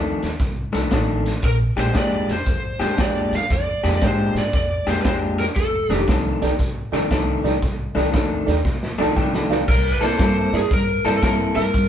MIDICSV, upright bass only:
0, 0, Header, 1, 2, 480
1, 0, Start_track
1, 0, Tempo, 515464
1, 1332, Time_signature, 4, 2, 24, 8
1, 11067, End_track
2, 0, Start_track
2, 0, Title_t, "Upright bass"
2, 0, Program_c, 0, 32
2, 0, Note_on_c, 0, 39, 79
2, 140, Note_off_c, 0, 39, 0
2, 210, Note_on_c, 0, 39, 74
2, 336, Note_off_c, 0, 39, 0
2, 370, Note_on_c, 0, 36, 79
2, 621, Note_off_c, 0, 36, 0
2, 689, Note_on_c, 0, 36, 73
2, 816, Note_off_c, 0, 36, 0
2, 847, Note_on_c, 0, 33, 81
2, 1227, Note_off_c, 0, 33, 0
2, 1330, Note_on_c, 0, 34, 82
2, 1582, Note_off_c, 0, 34, 0
2, 1640, Note_on_c, 0, 34, 84
2, 1772, Note_off_c, 0, 34, 0
2, 1812, Note_on_c, 0, 41, 86
2, 2064, Note_off_c, 0, 41, 0
2, 2130, Note_on_c, 0, 41, 80
2, 2258, Note_off_c, 0, 41, 0
2, 2290, Note_on_c, 0, 41, 80
2, 2543, Note_off_c, 0, 41, 0
2, 2599, Note_on_c, 0, 41, 73
2, 2732, Note_off_c, 0, 41, 0
2, 2779, Note_on_c, 0, 41, 79
2, 3029, Note_off_c, 0, 41, 0
2, 3088, Note_on_c, 0, 41, 76
2, 3218, Note_off_c, 0, 41, 0
2, 3264, Note_on_c, 0, 41, 86
2, 3512, Note_off_c, 0, 41, 0
2, 3576, Note_on_c, 0, 41, 83
2, 3702, Note_off_c, 0, 41, 0
2, 3741, Note_on_c, 0, 44, 89
2, 3990, Note_off_c, 0, 44, 0
2, 4044, Note_on_c, 0, 44, 77
2, 4175, Note_off_c, 0, 44, 0
2, 4220, Note_on_c, 0, 41, 82
2, 4470, Note_off_c, 0, 41, 0
2, 4532, Note_on_c, 0, 41, 73
2, 4661, Note_off_c, 0, 41, 0
2, 4697, Note_on_c, 0, 41, 84
2, 5075, Note_off_c, 0, 41, 0
2, 5179, Note_on_c, 0, 29, 83
2, 5429, Note_off_c, 0, 29, 0
2, 5484, Note_on_c, 0, 29, 87
2, 5616, Note_off_c, 0, 29, 0
2, 5657, Note_on_c, 0, 36, 86
2, 5908, Note_off_c, 0, 36, 0
2, 5974, Note_on_c, 0, 36, 80
2, 6101, Note_off_c, 0, 36, 0
2, 6134, Note_on_c, 0, 36, 79
2, 6386, Note_off_c, 0, 36, 0
2, 6446, Note_on_c, 0, 36, 76
2, 6577, Note_off_c, 0, 36, 0
2, 6617, Note_on_c, 0, 36, 80
2, 6868, Note_off_c, 0, 36, 0
2, 6921, Note_on_c, 0, 36, 87
2, 7053, Note_off_c, 0, 36, 0
2, 7100, Note_on_c, 0, 36, 80
2, 7349, Note_off_c, 0, 36, 0
2, 7403, Note_on_c, 0, 36, 84
2, 7534, Note_off_c, 0, 36, 0
2, 7579, Note_on_c, 0, 39, 86
2, 7828, Note_off_c, 0, 39, 0
2, 7889, Note_on_c, 0, 39, 83
2, 8018, Note_off_c, 0, 39, 0
2, 8049, Note_on_c, 0, 36, 82
2, 8302, Note_off_c, 0, 36, 0
2, 8370, Note_on_c, 0, 36, 74
2, 8497, Note_off_c, 0, 36, 0
2, 8535, Note_on_c, 0, 36, 78
2, 9011, Note_off_c, 0, 36, 0
2, 9015, Note_on_c, 0, 36, 80
2, 9264, Note_off_c, 0, 36, 0
2, 9322, Note_on_c, 0, 36, 81
2, 9452, Note_off_c, 0, 36, 0
2, 9491, Note_on_c, 0, 43, 88
2, 9741, Note_off_c, 0, 43, 0
2, 9802, Note_on_c, 0, 43, 76
2, 9931, Note_off_c, 0, 43, 0
2, 9974, Note_on_c, 0, 43, 79
2, 10222, Note_off_c, 0, 43, 0
2, 10281, Note_on_c, 0, 43, 75
2, 10410, Note_off_c, 0, 43, 0
2, 10452, Note_on_c, 0, 43, 78
2, 10701, Note_off_c, 0, 43, 0
2, 10760, Note_on_c, 0, 43, 78
2, 10889, Note_off_c, 0, 43, 0
2, 10929, Note_on_c, 0, 43, 89
2, 11067, Note_off_c, 0, 43, 0
2, 11067, End_track
0, 0, End_of_file